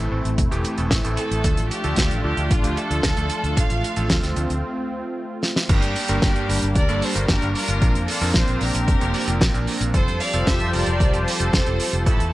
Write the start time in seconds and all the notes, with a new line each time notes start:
Already playing: A3 C4 E4
0.12 A1 A2 E3 A3 C4 A4
0.25 A1, closed hi-hat
0.38 E1, kick, closed hi-hat
0.51 E1 A2 E3 A3 C4 G4, closed hi-hat
0.65 closed hi-hat
0.78 E1 A2 E3 A3 C4 A4, closed hi-hat
0.91 A1, kick, snare, closed hi-hat
1.04 A1 A2 E3 A3 C4 A4, closed hi-hat
1.17 A4, closed hi-hat
1.31 A1, closed hi-hat
1.44 D2 F3 A3 D4 F4 A4, kick, closed hi-hat
1.57 A1, closed hi-hat
1.71 G4, closed hi-hat
1.84 D2 F3 A3 D4 A4, closed hi-hat
1.96 D2, kick, snare, closed hi-hat
2.11 A1, closed hi-hat
2.24 D2 F3 A3 D4 G4 A4
2.37 D2, closed hi-hat
2.51 A1 F4, kick, closed hi-hat
2.64 D2 F3 A3 D4 G4, closed hi-hat
2.77 A4, closed hi-hat
2.90 D2 F3 A3 D4 A4, closed hi-hat
3.03 D2, kick, snare, closed hi-hat
3.17 D2 F3 A3 D4 A4, closed hi-hat
3.30 closed hi-hat
3.44 D2, closed hi-hat
3.57 A1 F3 A3 C4 D4 A4 F5, kick, closed hi-hat
3.70 A1, closed hi-hat
3.84 closed hi-hat
3.96 A1 F3 A3 D4 A4, closed hi-hat
4.10 D2, kick, snare, closed hi-hat
4.23 D2, snare, closed hi-hat
4.36 D2 F3 A3 D4 A4, closed hi-hat
4.50 D2, closed hi-hat
5.43 snare
5.56 snare
5.69 G1 G2 G3 A#3 D4 G4 A#4, kick, closed hi-hat, crash
5.82 G2, closed hi-hat
5.96 open hi-hat
6.08 G1 G2 G3 A#3 D4 A#4, closed hi-hat
6.22 G1, kick, snare, closed hi-hat
6.36 G2, closed hi-hat
6.49 G1 G2 G3 A#3 D4 A#4, open hi-hat
6.62 G1, closed hi-hat
6.75 D2 A#4 D5, kick, closed hi-hat
6.89 G1 G2 G3 A#3 D4 A4, closed hi-hat
7.02 A4 C5, open hi-hat
7.15 G1 G2 G3 A#3 D4 A#4, closed hi-hat
7.28 G1 G4 A#4, kick, snare, closed hi-hat
7.42 G1 G2 G3 A#3 D4 A#4, closed hi-hat
7.55 F4 A#4, open hi-hat
7.68 G1, closed hi-hat
7.82 A#1 A#2 F3 C4 D4 A#4, kick, closed hi-hat
7.95 F2, closed hi-hat
8.08 F4 A4, open hi-hat
8.21 F2 A#2 F3 C4 D4 A#4, open hi-hat
8.34 A#1 F4 C5, kick, snare, closed hi-hat
8.48 A#1, closed hi-hat
8.61 A#1 A#2 F3 C4 D4 G4 A#4, open hi-hat
8.74 A#1, closed hi-hat
8.88 F1, kick, closed hi-hat
9.01 F1 A#2 F3 C4 D4 G4, closed hi-hat
9.14 open hi-hat
9.28 F1 A#2 F3 C4 D4 A#4, closed hi-hat
9.41 A#1, kick, snare, closed hi-hat
9.54 A#1 A#2 F3 C4 D4 A#4, closed hi-hat
9.67 open hi-hat
9.81 A#1, closed hi-hat
9.94 F1 F3 G3 C4 F4 G4 A4 C5 A5, kick, closed hi-hat
10.07 F2, closed hi-hat
10.20 D5 F5, open hi-hat
10.34 F1 G3 C4 F4 A4, closed hi-hat
10.47 F1 C5 E5, kick, snare, closed hi-hat
10.60 F2, closed hi-hat
10.73 F1 G3 C4 F4 A4 A#4 D5, open hi-hat
10.86 F1, closed hi-hat
11.00 C2, kick, closed hi-hat
11.13 F1 G3 C4 F4 G4, closed hi-hat
11.27 A4 C5, open hi-hat
11.40 F1 G3 C4 F4 A4, closed hi-hat
11.53 F1, kick, snare, closed hi-hat
11.66 F1 G3 C4 F4 A4, closed hi-hat
11.80 open hi-hat
11.93 F1, closed hi-hat
12.06 A1 A2 E3 A3 C4 E4 A4 E5, kick, closed hi-hat
12.20 E2, closed hi-hat